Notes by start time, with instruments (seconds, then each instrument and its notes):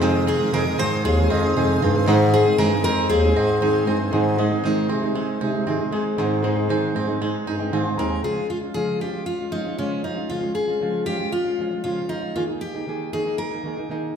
Already playing: bass clarinet F2, grand piano G#3 D#4 F4 C5, five-string banjo D#4, ambient pad G#4 F5 D#6
0.01 nylon-string guitar F2 C3 D#3 G#3 C4 G#4, five-string banjo D#3
0.27 five-string banjo C4, steel-string acoustic guitar G#4
0.39 nylon-string guitar D#3 G#3 C4 G#4
0.52 nylon-string guitar F2 C3 D#3 G#3 C4 G#4, bass clarinet F2, five-string banjo G#3, steel-string acoustic guitar A#4
0.65 nylon-string guitar D#3 G#3 C4 G#4
0.78 bass clarinet G#2, nylon-string guitar D#3 G#3 C4 G#4, five-string banjo C4, steel-string acoustic guitar C5
1.05 bass clarinet D#2, five-string banjo G#3, steel-string acoustic guitar G#4
1.17 nylon-string guitar D#3 G#3 C4 G#4
1.29 bass clarinet F2, grand piano G#3 D#4 F4 D#5, five-string banjo C4
1.42 nylon-string guitar D#3 G#3 C4 G#4
1.55 nylon-string guitar F2 C3 D#3 G#3 C4 G#4, bass clarinet F2, five-string banjo D#4
1.81 bass clarinet G2, nylon-string guitar D#3 G#3 C4 G#4, five-string banjo C4
1.94 nylon-string guitar D#3 G#3 C4 G#4
2.06 nylon-string guitar G#2 D#3 G#3 C4 D#4 G#4, bass clarinet G#2, five-string banjo D#3, grand piano G#3 C4 D#4 C5, ambient pad C5 G#5
2.34 five-string banjo C4, steel-string acoustic guitar G#4
2.45 nylon-string guitar G#3 C4 D#4 G#4
2.58 bass clarinet G2, nylon-string guitar G#2 D#3 G#3 C4 D#4 G#4, five-string banjo G#3, steel-string acoustic guitar A#4
2.71 nylon-string guitar G#3 C4 D#4 G#4
2.83 bass clarinet F2, nylon-string guitar G#3 C4 D#4 G#4, five-string banjo C4, steel-string acoustic guitar A#4
3.09 bass clarinet D#2, five-string banjo G#3, steel-string acoustic guitar G#4
3.23 nylon-string guitar G#3 C4 D#4 G#4
3.35 bass clarinet G#2, grand piano G#3 C4 D#4 D#5, five-string banjo C4
3.61 nylon-string guitar G#2 D#3 G#3 C4 D#4 G#4, five-string banjo D#4
3.86 bass clarinet G2, nylon-string guitar G#3 C4 D#4 G#4, five-string banjo C4
3.99 nylon-string guitar G#3 C4 D#4 G#4
4.11 nylon-string guitar G#2 D#3 G#3 C4 D#4 G#4, bass clarinet G#2, five-string banjo D#3, grand piano G#3 D#4 C5
4.37 grand piano G#3 D#4 D#5, nylon-string guitar G#3 C4 D#4, five-string banjo G#3
4.41 nylon-string guitar G#4
4.51 nylon-string guitar G#3 C4 D#4 G#4
4.64 nylon-string guitar G#2 D#3 G#3 C4 D#4 G#4, five-string banjo D#4
4.89 bass clarinet C3, nylon-string guitar G#3 C4 D#4 G#4, five-string banjo C4
5.02 nylon-string guitar G#3 C4 D#4 G#4
5.15 nylon-string guitar G#3 C4 D#4 G#4, five-string banjo G#3
5.41 bass clarinet C3, nylon-string guitar G#3 C4 D#4 G#4, five-string banjo D#4
5.53 nylon-string guitar G#3 C4 D#4 G#4
5.66 nylon-string guitar G#2 D#3 G#3 C4 D#4 G#4, five-string banjo C4
5.79 nylon-string guitar G#3 C4 D#4 G#4
5.91 grand piano G#3 D#4 G#4, nylon-string guitar G#3 C4 D#4, five-string banjo G#3
5.95 nylon-string guitar G#4
6.17 nylon-string guitar G#2 D#3 G#3 C4 D#4 G#4, bass clarinet G#2, five-string banjo D#3, grand piano G#3 D#4 C5
6.43 grand piano G#3 D#4 C5, nylon-string guitar G#3 C4 D#4 G#4, five-string banjo G#3
6.56 nylon-string guitar G#3 C4 D#4 G#4
6.69 nylon-string guitar G#2 D#3 G#3 C4 D#4 G#4, five-string banjo D#4
6.95 bass clarinet G#2, nylon-string guitar G#3 C4 D#4 G#4, five-string banjo C4
7.08 nylon-string guitar G#3 C4 D#4 G#4
7.21 nylon-string guitar G#3 C4 D#4 G#4, five-string banjo G#3
7.46 bass clarinet G2, nylon-string guitar G#3 C4 D#4 G#4, five-string banjo D#4
7.59 nylon-string guitar G#3 C4 D#4 G#4, grand piano D#5 G5
7.72 nylon-string guitar G#2 D#3 G#3 C4 D#4 G#4, bass clarinet G#2, five-string banjo C4, grand piano F5 G#5
7.85 nylon-string guitar G#3 C4 D#4 G#4, grand piano G#5 C6
7.97 bass clarinet D#2, nylon-string guitar G#3 C4 D#4 G#4, five-string banjo G#3, steel-string acoustic guitar A#4, grand piano G5 A#5
8.11 grand piano F5 G#5
8.23 nylon-string guitar C#3 F3 G#3 C#4 F4, steel-string acoustic guitar G#4
8.36 nylon-string guitar G#3 C#4 F4
8.50 steel-string acoustic guitar F4
8.62 nylon-string guitar G#3 C#4 F4
8.74 nylon-string guitar C#3 F3 G#3 C#4 F4, steel-string acoustic guitar G#4
9.00 nylon-string guitar F3 G#3 C#4 F4, steel-string acoustic guitar G4
9.13 nylon-string guitar G#3 C#4 F4
9.26 steel-string acoustic guitar F4
9.39 nylon-string guitar G#3 C#4 F4
9.51 nylon-string guitar F3 G#3 C#4 F4, steel-string acoustic guitar D#4
9.65 nylon-string guitar G#3 C#4 F4
9.78 nylon-string guitar C#3 F3 G#3 C#4 F4, steel-string acoustic guitar C#4
10.03 nylon-string guitar F3 G#3 C#4 F4, steel-string acoustic guitar D#4
10.16 nylon-string guitar G#3 C#4 F4
10.29 nylon-string guitar C#3 F3 G#3 C#4 F4, steel-string acoustic guitar F4
10.41 nylon-string guitar G#3 C#4 F4
10.55 steel-string acoustic guitar G#4
10.68 nylon-string guitar G#3 C#4 F4
10.81 nylon-string guitar C#3 F3 G#3 C#4 F4
11.06 nylon-string guitar F3 G#3 C#4 F4, steel-string acoustic guitar G4
11.20 nylon-string guitar G#3 C#4 F4
11.32 steel-string acoustic guitar F4
11.45 nylon-string guitar G#3 C#4 F4
11.59 nylon-string guitar F3 G#3 C#4 F4
11.71 nylon-string guitar G#3 C#4 F4
11.84 nylon-string guitar C#3 F3 G#3 C#4 F4, steel-string acoustic guitar F4
12.09 nylon-string guitar F3 G#3 C#4 F4, steel-string acoustic guitar D#4
12.21 nylon-string guitar G#3 C#4 F4
12.35 nylon-string guitar D#3 A#3 D#4 G#4, steel-string acoustic guitar F4
12.47 nylon-string guitar A#3 D#4 G#4
12.61 steel-string acoustic guitar G4
12.74 nylon-string guitar A#3 D#4 G#4
12.87 nylon-string guitar D#3 A#3 D#4 G#4
13.13 nylon-string guitar D#3 A#3 D#4 G#4, steel-string acoustic guitar G#4
13.25 nylon-string guitar A#3 D#4 G#4
13.38 steel-string acoustic guitar A#4
13.51 nylon-string guitar A#3 D#4 G#4
13.64 nylon-string guitar D#3 A#3 D#4 G#4
13.77 nylon-string guitar A#3 D#4 G#4
13.89 nylon-string guitar D#3 A#3 D#4 G#4